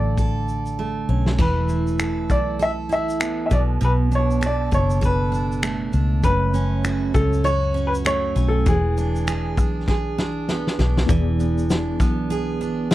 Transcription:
Already playing: A1 D3 A3 A4 D5
0.17 A4, kick, shaker
0.48 shaker
0.66 shaker
0.79 A3
1.09 B1 C#4
1.26 snare
1.38 E1 E3 B4, kick, splash
1.69 E4, shaker
1.87 shaker
1.99 A4, finger snap, shaker
2.30 B1 E4 D5, finger snap, kick, shaker
2.59 A4 E5, shaker
2.89 E4 E5, shaker
3.09 shaker
3.20 B3, finger snap, shaker
3.46 E5
3.51 B1 B2 D5, kick, shaker
3.81 B1 B2 B4, shaker
4.11 D4 C#5, shaker
4.31 shaker
4.41 A4, finger snap, shaker
4.46 D5
4.71 F#1 D4 C#5, kick, shaker
4.90 shaker
5.01 A4, kick, shaker
5.05 B4
5.32 D4, shaker
5.52 shaker
5.63 A3, finger snap, shaker
5.93 C#2 D4, shaker
6.24 F#1 F#2 B4, kick, shaker
6.54 C#4, shaker
6.84 F#4, finger snap, shaker
7.14 C#2 C#4 A4, finger snap, kick, shaker
7.33 shaker
7.44 F#4 C#5, shaker
7.74 C#4, shaker
7.87 B4
7.94 shaker
8.05 A3 C#5, finger snap, shaker
8.36 B1 C#4, shaker
8.48 A4
8.66 E1 E3 G#4, kick, shaker
8.98 D4, shaker
9.16 shaker
9.27 G#4, finger snap, shaker
9.57 B1 D4, kick, shaker
9.88 G#4, kick, snare
10.18 D4, snare
10.48 B3, snare
10.67 snare
10.79 B1 D4, snare
10.97 snare
11.06 E1 E3 B3 E4 G#4, kick, shaker
11.11 D5
11.40 B3, shaker
11.58 shaker
11.70 D4, snare, shaker
12.00 B1 B3, kick, snare, shaker
12.30 G#4, shaker
12.61 D4, shaker
12.91 B3, snare, shaker

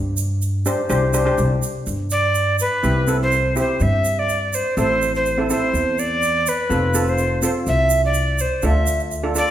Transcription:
Already playing: G2
0.17 shaker
0.42 shaker
0.66 D4 G4 C5, shaker
0.89 C2 D4 G4 C5, shaker
1.14 D4 G4 C5, shaker
1.25 D4 G4 C5
1.38 C2, shaker
1.63 shaker
1.87 G2, shaker
2.11 D5, shaker
2.35 shaker
2.59 B4, shaker
2.83 C2 C4 E4 G4, shaker
3.08 C4 E4 A4, shaker
3.22 C5
3.32 shaker
3.56 C4 E4 G4 C5, shaker
3.80 G2 E5, shaker
4.05 shaker
4.19 D5
4.29 shaker
4.53 C5, shaker
4.77 A1 C4 E4 A4 C5, shaker
5.02 shaker
5.14 C5, shaker
5.26 shaker
5.37 C4 E4 A4
5.50 C4 E4 A4 C5, shaker
5.74 E2, shaker
5.99 D5, shaker
6.22 shaker
6.47 B4, shaker
6.69 F1 C4 F4 A4, shaker
6.94 C4 F4 A4, shaker
7.07 C5, shaker
7.18 shaker
7.42 C4 F4 A4 C5, shaker
7.67 C2 E5, shaker
7.90 shaker
8.05 D5
8.14 shaker
8.38 C5, shaker
8.62 D2 D4 F4 A4 E5, shaker
8.87 shaker
9.00 shaker
9.11 shaker
9.23 D4 F4 A4
9.35 D4 F4 A4 D5, shaker

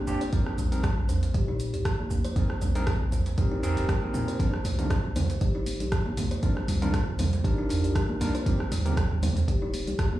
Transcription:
0.07 G1 C4 D4 F4 G4, djembe slap, shaker
0.21 C5, closed hi-hat, shaker
0.33 C4 D#4 G#4 A#4, kick, closed hi-hat, djembe tone, shaker
0.46 cross-stick
0.58 A#1 G3, closed hi-hat, djembe tone, shaker
0.72 C4 D#4 G#4 A#4, closed hi-hat, shaker
0.84 C4, kick, cross-stick, closed hi-hat, shaker
0.97 A#1
1.09 C5, closed hi-hat, djembe bass, shaker
1.23 closed hi-hat, djembe slap, shaker
1.34 A#2 G4, kick, closed hi-hat, shaker
1.48 D#4
1.60 closed hi-hat, shaker
1.74 A#1 G4, closed hi-hat, shaker
1.85 kick, cross-stick, closed hi-hat, shaker
1.99 A#3
2.10 A#1, djembe tone, shaker
2.25 C5, closed hi-hat, shaker
2.36 C4 D#4 G#4 A#4, kick, closed hi-hat, djembe tone, shaker
2.50 cross-stick
2.62 A#1 G3, closed hi-hat, djembe tone, shaker
2.75 C4 D#4 G#4 A#4, closed hi-hat, djembe slap, shaker
2.87 C4, kick, cross-stick, closed hi-hat, shaker
3.01 A#1
3.12 C5, kick, closed hi-hat, djembe tone, djembe bass, shaker
3.26 closed hi-hat, djembe slap, shaker
3.38 A#2 C4 D#4 G4 G#4 A#4, kick, closed hi-hat, shaker
3.51 D#4
3.63 C4 D#4 G#4 A#4, closed hi-hat, djembe slap, djembe bass, shaker
3.77 F1 G4, closed hi-hat, shaker
3.89 kick, cross-stick, closed hi-hat, shaker
4.02 A#3
4.14 A#2, djembe slap, shaker
4.28 C5, closed hi-hat, shaker
4.39 C4 D4 D#4 F4 A#4, kick, closed hi-hat, djembe tone, low conga, shaker
4.54 cross-stick
4.65 C2 G3, open hi-hat, djembe tone, shaker
4.79 D4 D#4 F4 A#4, closed hi-hat, mid tom, high conga, shaker
4.90 C4, kick, cross-stick, closed hi-hat, shaker
5.04 C2
5.16 C5, open hi-hat, mid tom, high conga, djembe bass, low conga, shaker
5.29 closed hi-hat, djembe slap, shaker
5.41 G1 G4, kick, closed hi-hat, high conga, shaker
5.55 D#4
5.66 open hi-hat, high conga, shaker
5.80 C2 G4, closed hi-hat, low conga, shaker
5.92 kick, cross-stick, closed hi-hat, shaker
6.06 A#3, high conga
6.17 C2, open hi-hat, mid tom, djembe tone, shaker
6.31 C5, closed hi-hat, shaker
6.43 C4 D4 D#4 F4 A#4, kick, closed hi-hat, low conga, shaker
6.57 cross-stick
6.68 C2 G3, open hi-hat, djembe tone, shaker
6.82 D4 D#4 F4 A#4, closed hi-hat, mid tom, djembe slap, shaker
6.94 C4, kick, cross-stick, closed hi-hat, shaker
7.08 C2
7.19 C5, open hi-hat, mid tom, high conga, djembe tone, djembe bass, low conga, shaker
7.33 closed hi-hat, djembe slap, shaker
7.44 G1 D4 D#4 F4 G4 A#4, kick, closed hi-hat, shaker
7.58 D#4
7.69 open hi-hat, djembe slap, djembe bass, shaker
7.84 C2 G4, closed hi-hat, shaker
7.95 kick, cross-stick, closed hi-hat, shaker
8.09 A#3, high conga
8.21 C2 D4 D#4 F4 A#4, open hi-hat, djembe slap, high conga, shaker
8.35 C5, closed hi-hat, shaker
8.46 C4 D#4 G4 A#4, kick, closed hi-hat, djembe tone, low conga, shaker
8.60 cross-stick
8.71 D#2 G3, open hi-hat, djembe tone, shaker
8.85 C4 D#4 G4 A#4, closed hi-hat, mid tom, high conga, shaker
8.97 C4, kick, cross-stick, closed hi-hat, shaker
9.11 D#2
9.23 C5, open hi-hat, mid tom, high conga, djembe bass, low conga, shaker
9.36 closed hi-hat, djembe slap, shaker
9.48 D#1 G4, kick, closed hi-hat, high conga, shaker
9.62 D#4
9.74 open hi-hat, high conga, shaker
9.87 D#2 G4, closed hi-hat, low conga, shaker
9.99 kick, cross-stick, closed hi-hat, shaker
10.12 A#3, high conga

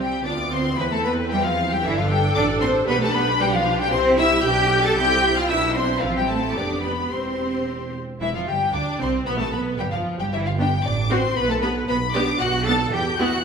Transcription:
Already playing: C2 G3 C4 G4
0.00 G5
0.24 D2 B3 D4 F4 D5 D6
0.52 C4 C5 C6
0.77 E2 B3 C4 E4 B4 B5
0.91 A3 A4 A5
1.04 B3 B4 B5
1.29 G3 E4 G4 G5
1.43 F3 F4 F5
1.70 G3 G4 G5
1.82 G1 E3 D4 E4 A4 E5
1.96 F3 F4 F5
2.09 G3 G4 G5
2.35 A1 D4 D5 D6
2.62 C4 C5 C6
2.86 B1 B3 D4 G4 B4 B5
3.00 A3 A4 A5
3.13 B3 B4 B5
3.39 G3 G4 G5
3.51 F3 F4 F5
3.79 G3 G4 G5
3.91 C2 C4 E4 G4 C5 C6
4.18 E4 E5 E6
4.44 B1 D4 G4 G5 G6
4.84 A4 A5 A6
4.97 C2 C4 E4 G4 G5 G6
5.36 F4 F5 F6
5.49 B1 D4 E4 E5 E6
5.75 C4 C5 C6
6.02 A1 F3 C4 F4 F5
6.16 G3 G4 G5
6.28 A3 A4 A5
6.55 F1 B3 D4 G4 D5 D6
6.83 B3 B4 B5
7.10 E1 C4 G4 C5 C6
8.20 E1 E3 E4 E5
8.33 F1 F3 F4 F5
8.46 G1 G3 G4 G5
8.73 D2 D4 D5 D6
8.98 C2 C4 C5 C6
9.26 B1 B3 B4 B5
9.39 A1 A3 A4 A5
9.52 B1 B3 B4 B5
9.78 G1 G3 G4 G5
9.90 F1 F3 F4 F5
10.18 G1 G3 G4 G5
10.31 G1 E3 E4 E5
10.45 F3 F4 F5
10.58 G3 B3 D4 G4 G5
10.84 A1 D4 D5 D6
11.10 C4 F#4 C5 C6
11.35 B1 B3 B4 B5
11.49 A3 A4 A5
11.61 B3 G4 B4 B5
11.87 B1 B3 B4 B5
12.13 B3 D4 G4 D5 D6
12.39 B1 F#4 F#5 F#6
12.65 B3 D4 A4 A5 A6
12.92 E2 G4 G5 G6
13.19 B3 E4 F#4 F#5 F#6

